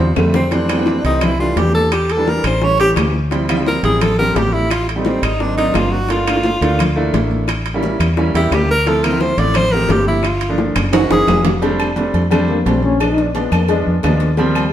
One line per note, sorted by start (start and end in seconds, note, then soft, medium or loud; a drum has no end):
0.00 0.15 E2 medium
0.00 0.19 F3 medium
0.16 0.99 F2 loud
0.16 0.41 D3 medium
0.16 0.41 G3 medium
0.16 0.41 A3 medium
0.16 0.35 A3 medium
0.16 0.42 C4 medium
0.16 low bongo loud
0.16 high conga medium
0.16 low timbale medium
0.16 claves medium
0.34 0.55 C4 loud
0.34 low bongo loud
0.34 high conga soft
0.34 low timbale medium
0.51 0.64 E3 medium
0.51 0.64 G3 medium
0.51 0.64 A3 medium
0.51 0.64 C4 medium
0.51 1.05 D4 medium
0.51 high bongo medium
0.51 high conga soft
0.51 high timbale medium
0.68 0.75 E3 medium
0.68 0.76 G3 medium
0.68 0.76 A3 medium
0.68 0.76 C4 medium
0.68 high bongo soft
0.68 high conga soft
0.68 high timbale loud
0.68 claves medium
0.77 0.96 E3 medium
0.77 0.96 G3 medium
0.77 0.96 A3 medium
0.77 0.97 C4 medium
0.86 high bongo medium
0.86 high conga loud
0.86 low timbale medium
1.04 1.53 C2 loud
1.04 1.29 E3 medium
1.04 1.29 G3 medium
1.04 1.29 A3 medium
1.04 1.30 C4 medium
1.04 1.25 D#4 medium
1.04 high bongo soft
1.04 high conga soft
1.04 high timbale medium
1.21 1.39 E4 medium
1.21 high bongo medium
1.21 high conga soft
1.21 low conga medium
1.21 high timbale medium
1.21 claves medium
1.39 1.88 E3 medium
1.39 1.89 G3 medium
1.39 1.89 A3 medium
1.39 1.89 D4 medium
1.39 1.59 F4 medium
1.39 high bongo soft
1.39 high conga soft
1.56 2.38 E2 loud
1.56 1.74 G4 loud
1.56 high bongo medium
1.56 low bongo medium
1.56 high conga medium
1.56 high timbale medium
1.56 low timbale medium
1.74 1.94 A4 loud
1.74 high conga medium
1.92 2.13 G4 medium
1.92 high bongo medium
1.92 high timbale medium
1.92 claves medium
2.09 2.30 A4 loud
2.09 high bongo soft
2.09 high conga soft
2.09 high timbale medium
2.17 2.48 E3 medium
2.17 2.48 G3 medium
2.17 2.49 A#3 medium
2.17 2.49 D4 medium
2.27 2.45 A#4 medium
2.27 high bongo medium
2.27 high conga loud
2.27 low timbale medium
2.44 2.93 A1 loud
2.44 2.65 C5 loud
2.44 high timbale loud
2.44 claves medium
2.61 2.74 E3 medium
2.61 2.74 G3 medium
2.61 2.74 A3 medium
2.61 2.74 C#4 medium
2.61 2.80 C#5 loud
2.61 high bongo medium
2.79 3.16 E3 medium
2.79 3.16 G3 medium
2.79 3.16 A3 medium
2.79 3.16 C#4 medium
2.79 2.91 G4 loud
2.79 high bongo soft
2.79 high conga soft
2.79 high timbale medium
2.96 3.78 D2 loud
2.96 high bongo medium
2.96 low bongo medium
2.96 high conga medium
2.96 high timbale loud
2.96 low timbale medium
2.96 claves medium
3.14 high bongo soft
3.14 high conga soft
3.31 3.43 F3 medium
3.31 3.44 G3 medium
3.31 3.44 C4 medium
3.31 3.44 E4 medium
3.31 high bongo medium
3.31 high conga soft
3.31 high timbale medium
3.49 3.55 F3 loud
3.49 3.55 G3 medium
3.49 3.55 C4 medium
3.49 3.55 E4 loud
3.49 high bongo soft
3.49 high conga soft
3.49 high timbale loud
3.49 claves medium
3.57 3.76 F3 medium
3.57 3.76 G3 medium
3.57 3.76 C4 medium
3.57 3.76 E4 medium
3.66 3.83 A#4 loud
3.66 high bongo medium
3.66 high conga loud
3.66 low timbale medium
3.83 4.32 A1 loud
3.83 4.08 F3 medium
3.83 4.08 G3 medium
3.83 4.08 C4 medium
3.83 4.08 E4 medium
3.83 4.03 G#4 loud
3.83 high bongo soft
3.83 high conga soft
3.83 high timbale medium
4.01 4.18 A4 loud
4.01 high bongo medium
4.01 high conga soft
4.01 low conga medium
4.01 high timbale loud
4.01 claves medium
4.18 4.67 F3 medium
4.18 4.67 G3 medium
4.18 4.68 C4 medium
4.18 4.68 G4 medium
4.18 4.37 A#4 loud
4.18 high bongo soft
4.18 high conga soft
4.18 low conga medium
4.35 5.17 A1 loud
4.35 4.54 G4 loud
4.35 high bongo medium
4.35 low bongo medium
4.35 high conga medium
4.35 high timbale medium
4.35 low timbale medium
4.53 4.72 E4 loud
4.53 high conga medium
4.70 4.88 F4 loud
4.70 high bongo medium
4.70 high timbale loud
4.70 claves medium
4.87 5.06 A3 soft
4.87 high bongo soft
4.87 high conga soft
4.87 high timbale medium
4.96 5.27 G3 medium
4.96 5.27 A3 medium
4.96 5.28 C4 medium
4.96 5.28 D#4 medium
5.05 5.25 C4 medium
5.05 high bongo medium
5.05 high conga loud
5.05 low timbale medium
5.22 5.71 G#1 loud
5.22 5.42 D#4 medium
5.22 high timbale loud
5.22 claves medium
5.40 5.52 F#3 medium
5.40 5.53 A#3 medium
5.40 5.53 C4 medium
5.40 5.57 D4 loud
5.40 5.53 D#4 medium
5.40 high bongo medium
5.40 high conga soft
5.57 5.94 F#3 medium
5.57 5.94 A#3 medium
5.57 5.94 C4 medium
5.57 5.95 D4 medium
5.57 5.77 D#4 loud
5.57 high bongo soft
5.57 high conga soft
5.57 high timbale medium
5.74 6.56 G1 loud
5.74 5.93 F4 medium
5.74 high bongo medium
5.74 low bongo medium
5.74 high conga medium
5.74 high timbale medium
5.74 low timbale medium
5.74 claves medium
5.92 6.12 F#4 loud
5.92 high bongo soft
5.92 high conga soft
6.09 6.22 A3 medium
6.09 6.22 A#3 medium
6.09 6.22 D4 medium
6.09 6.22 F4 medium
6.09 7.14 F4 medium
6.09 high bongo medium
6.09 high conga soft
6.09 high timbale medium
6.26 6.33 A3 medium
6.26 6.33 A#3 medium
6.26 6.33 D4 medium
6.26 6.33 F4 medium
6.26 high bongo soft
6.26 high conga soft
6.26 high timbale loud
6.26 claves medium
6.35 6.54 A3 medium
6.35 6.54 A#3 medium
6.35 6.54 D4 medium
6.35 6.54 F4 medium
6.43 high bongo medium
6.43 high conga loud
6.43 low timbale medium
6.61 7.10 D2 loud
6.61 6.86 A3 loud
6.61 6.86 A#3 medium
6.61 6.86 D4 medium
6.61 6.87 F4 medium
6.61 high bongo soft
6.61 high conga soft
6.61 high timbale medium
6.79 high bongo medium
6.79 high conga soft
6.79 low conga medium
6.79 high timbale medium
6.79 claves medium
6.96 7.45 A3 loud
6.96 7.45 A#3 medium
6.96 7.45 D4 medium
6.96 7.45 E4 loud
6.96 high bongo soft
6.96 high conga soft
7.13 7.94 A1 medium
7.13 high bongo medium
7.13 low bongo medium
7.13 high conga medium
7.13 high timbale medium
7.13 low timbale medium
7.31 high conga medium
7.48 high bongo medium
7.48 high conga soft
7.48 high timbale loud
7.48 claves medium
7.66 high bongo soft
7.66 high conga soft
7.66 high timbale medium
7.74 8.04 G3 medium
7.74 8.05 A#3 medium
7.74 8.05 C#4 medium
7.74 8.05 E4 loud
7.83 high bongo medium
7.83 high conga loud
7.83 low timbale medium
8.00 8.32 E2 loud
8.00 high timbale loud
8.00 claves medium
8.17 8.29 G3 medium
8.17 8.30 A#3 medium
8.17 8.30 C#4 medium
8.17 8.30 E4 loud
8.17 high bongo medium
8.17 high conga soft
8.34 8.50 E2 medium
8.34 8.71 G3 medium
8.34 8.71 A#3 medium
8.34 8.71 C#4 medium
8.34 8.55 E4 loud
8.34 8.71 G4 loud
8.34 high bongo soft
8.34 high conga soft
8.34 high timbale medium
8.51 9.32 D2 loud
8.51 8.70 G4 medium
8.51 high bongo medium
8.51 low bongo medium
8.51 high conga medium
8.51 high timbale medium
8.51 low timbale medium
8.51 claves medium
8.69 8.89 A#4 loud
8.69 high bongo soft
8.69 high conga soft
8.86 8.98 F3 medium
8.86 8.98 A3 medium
8.86 8.99 C4 medium
8.86 8.99 E4 medium
8.86 9.05 A4 loud
8.86 high bongo medium
8.86 high conga soft
8.86 high timbale medium
9.03 9.09 F3 medium
9.03 9.10 A3 medium
9.03 9.10 C4 medium
9.03 9.10 E4 medium
9.03 9.22 A#4 loud
9.03 high bongo soft
9.03 high conga soft
9.03 high timbale loud
9.03 claves medium
9.11 9.30 F3 medium
9.11 9.30 A3 medium
9.11 9.30 C4 medium
9.11 9.31 E4 loud
9.21 9.40 C5 loud
9.21 high bongo medium
9.21 high conga loud
9.21 low timbale medium
9.37 9.86 A1 loud
9.37 9.62 F3 medium
9.37 9.62 A3 medium
9.37 9.63 C4 medium
9.37 9.63 E4 medium
9.37 9.57 D5 loud
9.37 high timbale medium
9.54 9.73 C5 loud
9.54 high bongo medium
9.54 high conga soft
9.54 low conga medium
9.54 high timbale loud
9.54 claves medium
9.72 10.21 F3 medium
9.72 10.21 A3 medium
9.72 10.21 C4 medium
9.72 10.21 G4 medium
9.72 9.93 A#4 loud
9.72 high bongo soft
9.72 high conga soft
9.89 10.70 G1 loud
9.89 10.07 G4 medium
9.89 high bongo medium
9.89 low bongo medium
9.89 high conga medium
9.89 high timbale medium
9.89 low timbale medium
10.07 10.28 E4 medium
10.07 high conga medium
10.23 10.60 F4 medium
10.23 high bongo medium
10.23 high conga soft
10.23 high timbale medium
10.23 claves medium
10.41 high bongo soft
10.41 high conga soft
10.41 high timbale medium
10.49 10.80 F3 medium
10.49 10.80 A3 medium
10.49 10.80 A#3 medium
10.49 10.80 D4 medium
10.58 high bongo medium
10.58 high conga medium
10.58 low timbale medium
10.76 11.08 F#1 loud
10.76 high conga loud
10.76 high timbale loud
10.76 claves medium
10.92 11.05 E3 medium
10.92 11.05 G#3 medium
10.92 11.05 A#3 medium
10.92 11.05 C#4 medium
10.92 11.10 F#4 medium
10.92 high bongo medium
10.92 low conga loud
10.92 high timbale loud
11.10 11.26 F#1 medium
11.10 11.46 E3 medium
11.10 11.46 G#3 medium
11.10 11.47 A#3 medium
11.10 11.47 C#4 medium
11.10 11.43 G#4 loud
11.10 high bongo medium
11.10 low conga medium
11.10 high timbale medium
11.27 12.08 F1 loud
11.27 low bongo medium
11.27 low conga loud
11.27 low timbale medium
11.27 claves medium
11.45 low bongo medium
11.45 low conga loud
11.45 low timbale medium
11.62 11.86 G3 loud
11.62 11.86 A3 medium
11.62 11.87 C4 medium
11.62 11.87 D4 loud
11.62 cowbell loud
11.62 high conga soft
11.62 low agogo medium
11.79 high conga soft
11.79 low agogo loud
11.79 claves medium
11.96 12.20 G3 medium
11.96 12.21 A3 medium
11.96 12.21 C4 medium
11.96 12.21 D4 medium
11.96 cowbell medium
11.96 high conga loud
11.96 low timbale medium
12.13 12.62 F2 loud
12.13 cowbell medium
12.13 high conga soft
12.13 low agogo medium
12.30 12.55 G3 medium
12.30 12.55 A3 medium
12.30 12.56 C4 medium
12.30 12.56 D4 loud
12.30 cowbell loud
12.30 high conga soft
12.30 low conga medium
12.30 low agogo loud
12.30 claves medium
12.48 12.67 A#3 medium
12.48 high conga soft
12.48 low conga medium
12.65 13.46 A#1 loud
12.65 12.90 G3 medium
12.65 12.90 A3 medium
12.65 12.84 C4 medium
12.65 12.90 C4 medium
12.65 12.91 D4 medium
12.65 cowbell medium
12.65 high conga medium
12.65 low timbale medium
12.65 low agogo medium
12.83 13.02 C#4 loud
12.83 high conga medium
13.00 13.24 F3 medium
13.00 13.25 G#3 medium
13.00 13.25 B3 medium
13.00 13.13 D4 medium
13.00 13.25 D4 medium
13.00 cowbell loud
13.00 low agogo loud
13.00 claves medium
13.12 13.24 D#4 loud
13.17 cowbell medium
13.17 high conga soft
13.23 13.36 D4 medium
13.34 13.59 F3 medium
13.34 13.59 G#3 medium
13.34 13.53 B3 medium
13.34 13.59 B3 medium
13.34 13.59 D4 medium
13.34 cowbell medium
13.34 high conga loud
13.34 low timbale medium
13.34 low agogo medium
13.52 13.84 F2 loud
13.52 13.68 A#3 medium
13.52 cowbell medium
13.52 low agogo loud
13.52 claves medium
13.69 13.93 F3 medium
13.69 13.79 G#3 medium
13.69 13.94 G#3 medium
13.69 13.94 B3 medium
13.69 13.94 D4 medium
13.69 cowbell loud
13.69 low agogo medium
13.87 14.03 F2 medium
13.87 high conga soft
14.03 14.73 D#2 loud
14.03 14.28 F3 medium
14.03 14.28 G#3 medium
14.03 14.28 B3 medium
14.03 14.28 D4 loud
14.03 cowbell medium
14.03 high conga medium
14.03 low timbale medium
14.03 low agogo medium
14.03 claves medium
14.20 cowbell medium
14.20 high conga soft
14.37 14.62 F3 loud
14.37 14.62 G3 medium
14.37 14.62 A#3 medium
14.37 14.63 C4 loud
14.37 cowbell medium
14.37 high conga soft
14.37 low agogo medium
14.54 14.73 G3 medium
14.54 high conga soft
14.54 low agogo loud
14.54 claves medium